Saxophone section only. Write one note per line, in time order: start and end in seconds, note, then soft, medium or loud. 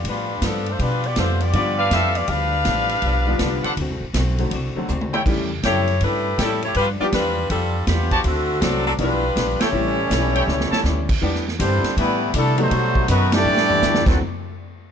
0.09 0.45 G3 medium
0.09 0.44 D4 medium
0.09 0.44 F4 medium
0.09 0.44 B4 medium
0.45 0.68 F3 medium
0.45 0.68 B3 medium
0.45 0.68 D4 medium
0.45 0.68 A4 medium
0.70 0.81 A3 medium
0.70 0.80 D4 medium
0.70 0.80 F4 medium
0.70 0.81 C5 medium
0.81 1.05 G3 medium
0.81 1.05 D4 medium
0.81 1.05 F4 medium
0.81 1.05 B4 medium
1.06 1.18 B3 medium
1.06 1.17 F4 medium
1.06 1.18 G4 medium
1.06 1.18 D5 medium
1.18 1.41 A3 medium
1.18 1.40 D4 medium
1.18 1.40 F4 medium
1.18 1.40 C5 medium
1.41 1.54 B3 medium
1.41 1.54 F4 medium
1.41 1.54 G4 medium
1.41 1.54 D5 medium
1.55 1.89 B3 medium
1.55 1.89 F4 medium
1.55 1.89 G4 medium
1.55 1.89 D5 medium
1.93 2.15 C4 medium
1.93 2.15 F4 medium
1.93 2.15 A4 medium
1.93 2.15 E5 loud
2.17 2.29 B3 medium
2.17 2.29 F4 medium
2.17 2.28 G4 medium
2.17 2.29 D5 medium
2.29 3.78 D4 medium
2.29 3.78 G4 medium
2.29 3.78 B4 loud
2.29 3.78 F5 loud
5.65 5.99 A3 medium
5.65 5.99 E4 medium
5.65 5.99 G4 medium
5.65 5.99 C#5 loud
6.04 6.39 A3 medium
6.04 6.40 E4 medium
6.04 6.39 G4 medium
6.04 6.39 B4 medium
6.42 6.63 G3 medium
6.42 6.63 C#4 medium
6.42 6.63 E4 medium
6.42 6.63 A4 medium
6.65 6.76 A3 medium
6.65 6.76 E4 medium
6.65 6.76 G4 medium
6.65 6.75 C#5 medium
6.77 6.88 G3 medium
6.77 6.89 D4 medium
6.77 6.88 F4 medium
6.77 6.88 B4 loud
7.01 7.07 B3 medium
7.01 7.07 F4 medium
7.01 7.06 G4 medium
7.01 7.06 D5 medium
7.15 7.48 G3 medium
7.15 7.48 D4 medium
7.15 7.49 F4 medium
7.15 7.48 B4 loud
7.51 7.85 G3 medium
7.51 7.85 D4 medium
7.51 7.85 F4 medium
7.51 7.85 A4 medium
7.88 8.22 B3 medium
7.88 8.22 D4 medium
7.88 8.22 F4 medium
7.88 8.22 G4 medium
8.25 8.62 D3 medium
8.25 8.62 A3 medium
8.25 8.61 C4 medium
8.25 8.62 F#4 medium
8.62 8.86 F#3 medium
8.62 8.86 C4 medium
8.62 8.86 D4 medium
8.62 8.86 A4 loud
8.87 8.93 F#3 medium
8.87 8.93 C4 medium
8.87 8.93 D4 medium
8.87 8.93 A4 medium
9.01 9.58 G3 medium
9.01 9.58 D4 medium
9.01 9.58 F4 medium
9.01 9.58 B4 loud
9.62 11.10 A3 medium
9.62 11.10 E4 medium
9.62 11.10 G4 medium
9.62 11.10 C#5 loud